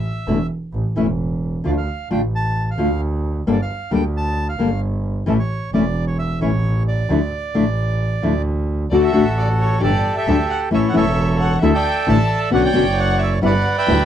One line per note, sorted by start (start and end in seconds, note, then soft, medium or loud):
0.00 0.47 E5 medium
0.27 0.47 E1 medium
0.27 0.37 D3 medium
0.27 0.37 A3 medium
0.27 0.38 D4 medium
0.27 0.37 E4 medium
0.73 0.93 A1 medium
0.96 1.61 E1 medium
0.96 1.05 E3 medium
0.96 1.06 A3 medium
0.96 1.06 C#4 medium
0.96 1.06 E4 medium
1.64 1.84 D2 medium
1.64 1.73 D3 medium
1.64 1.74 A3 medium
1.64 1.74 D4 medium
1.64 1.74 F4 medium
1.64 1.71 D5 medium
1.77 2.09 F5 medium
2.09 2.75 A1 medium
2.09 2.20 D3 medium
2.09 2.20 A3 medium
2.09 2.20 D4 medium
2.09 2.20 F4 medium
2.09 2.22 G5 medium
2.35 2.69 A5 medium
2.71 3.01 F5 medium
2.78 3.43 D2 medium
2.78 2.87 D3 medium
2.78 2.88 A3 medium
2.78 2.88 D4 medium
2.78 2.88 F4 medium
3.47 3.66 G1 medium
3.47 3.56 D3 medium
3.47 3.56 G3 medium
3.47 3.56 A#3 medium
3.47 3.56 D4 medium
3.47 3.56 A4 medium
3.52 3.61 D5 medium
3.62 3.92 F5 medium
3.91 4.57 D2 medium
3.91 4.01 D3 medium
3.91 4.01 G3 medium
3.91 4.01 A#3 medium
3.91 4.01 D4 medium
3.91 4.01 A4 medium
3.91 4.04 G5 medium
4.17 4.48 A5 medium
4.49 4.80 F5 medium
4.58 5.24 G1 medium
4.58 4.68 D3 medium
4.58 4.69 G3 medium
4.58 4.69 A#3 medium
4.58 4.69 D4 medium
4.58 4.70 A4 medium
5.26 5.47 A1 medium
5.26 5.36 E3 medium
5.26 5.36 A3 medium
5.26 5.36 C#4 medium
5.26 5.37 E4 medium
5.26 5.34 A4 medium
5.39 5.71 C#5 medium
5.72 6.37 E1 medium
5.72 5.82 E3 medium
5.72 5.82 A3 medium
5.72 5.83 C#4 medium
5.72 5.83 E4 medium
5.72 6.05 D5 medium
6.07 6.18 C#5 medium
6.19 6.40 E5 medium
6.40 7.05 A1 medium
6.40 6.50 E3 medium
6.40 6.50 A3 medium
6.40 6.50 C#4 medium
6.40 6.51 E4 medium
6.40 6.83 C#5 medium
6.88 8.42 D5 medium
7.08 7.28 D2 medium
7.08 7.18 D3 medium
7.08 7.18 F3 medium
7.08 7.18 A3 medium
7.08 7.19 D4 medium
7.08 7.19 E4 medium
7.54 8.19 A1 medium
7.54 7.63 D3 medium
7.54 7.63 F3 medium
7.54 7.63 A3 medium
7.54 7.64 D4 medium
7.54 7.64 E4 medium
8.22 8.88 D2 medium
8.22 8.32 D3 medium
8.22 8.31 F3 medium
8.22 8.32 A3 medium
8.22 8.32 D4 medium
8.22 8.32 E4 medium
8.90 9.10 D2 medium
8.90 9.08 D3 medium
8.90 9.08 A3 medium
8.90 9.09 D4 medium
8.90 9.09 F#4 medium
8.90 9.79 F#4 medium
8.90 9.02 A4 medium
8.90 9.01 D5 medium
8.90 9.04 D5 medium
9.04 9.79 A4 medium
9.04 9.38 E5 medium
9.04 9.35 E5 medium
9.12 9.79 A1 medium
9.12 9.22 D3 medium
9.12 9.23 A3 medium
9.12 9.23 D4 medium
9.12 9.23 F#4 medium
9.37 9.47 D5 medium
9.37 9.49 D5 medium
9.59 9.80 C#5 medium
9.59 9.82 C#5 medium
9.80 10.01 G1 medium
9.80 9.90 D3 medium
9.80 9.90 G3 medium
9.80 9.90 D4 medium
9.80 9.90 G4 medium
9.80 10.16 G4 medium
9.80 10.16 A4 soft
9.80 10.13 D5 medium
9.80 10.17 D5 medium
10.15 10.69 G4 medium
10.15 10.69 A4 medium
10.15 10.47 E5 medium
10.15 10.48 E5 medium
10.27 10.46 D2 medium
10.27 10.36 D3 medium
10.27 10.36 G3 medium
10.27 10.37 D4 medium
10.27 10.37 G4 medium
10.50 10.60 F#5 medium
10.50 10.61 F#5 medium
10.71 10.91 A1 medium
10.71 10.88 E3 medium
10.71 10.88 A3 medium
10.71 10.89 C#4 medium
10.71 10.89 E4 medium
10.71 10.95 A4 medium
10.71 10.96 C#5 medium
10.71 10.80 E5 medium
10.71 10.81 E5 medium
10.88 10.94 F#5 soft
10.88 10.96 F#5 medium
10.93 11.59 E1 medium
10.93 11.03 E3 medium
10.93 11.03 A3 medium
10.93 11.03 C#4 medium
10.93 11.03 E4 medium
10.93 11.59 A4 medium
10.93 11.60 C#5 medium
10.93 11.37 E5 medium
10.93 11.38 E5 medium
11.40 11.60 F#5 medium
11.40 11.62 F#5 medium
11.61 11.81 D2 medium
11.61 11.71 D3 medium
11.61 11.71 A3 medium
11.61 11.72 D4 medium
11.61 11.72 E4 medium
11.61 12.49 A4 medium
11.61 11.72 E5 medium
11.61 11.74 E5 medium
11.74 12.07 D5 medium
11.74 12.07 E5 medium
11.74 12.06 G5 medium
11.74 12.09 G5 medium
12.07 12.27 A1 medium
12.07 12.16 D3 medium
12.07 12.17 A3 medium
12.07 12.17 D4 medium
12.07 12.17 E4 medium
12.07 12.50 D5 medium
12.07 12.50 E5 medium
12.07 12.39 A5 medium
12.07 12.40 A5 medium
12.50 12.72 B1 medium
12.50 12.68 B2 medium
12.50 12.68 D3 medium
12.50 12.69 B3 medium
12.50 12.69 C#4 medium
12.50 12.69 F#4 medium
12.50 12.63 D5 medium
12.50 12.62 F#5 medium
12.50 12.64 F#5 medium
12.55 12.63 C#5 medium
12.63 13.39 C#5 medium
12.63 13.39 D5 medium
12.63 12.95 G5 medium
12.63 12.99 G5 medium
12.73 13.40 F#1 medium
12.73 12.83 B2 medium
12.73 12.83 D3 medium
12.73 12.83 B3 medium
12.73 12.84 C#4 medium
12.73 12.84 F#4 medium
12.97 13.19 F#5 medium
12.97 13.20 F#5 medium
13.19 13.30 E5 medium
13.19 13.33 E5 medium
13.42 13.62 G1 medium
13.42 13.51 G3 medium
13.42 13.52 B3 medium
13.42 13.52 E4 medium
13.42 14.05 D5 medium
13.42 13.74 F#5 medium
13.42 13.76 F#5 medium
13.46 13.77 B4 medium
13.77 14.05 B4 medium
13.77 14.05 E5 medium
13.77 14.05 G5 medium
13.87 14.05 D2 medium
13.87 13.96 G3 medium
13.87 13.97 B3 medium
13.87 13.97 E4 medium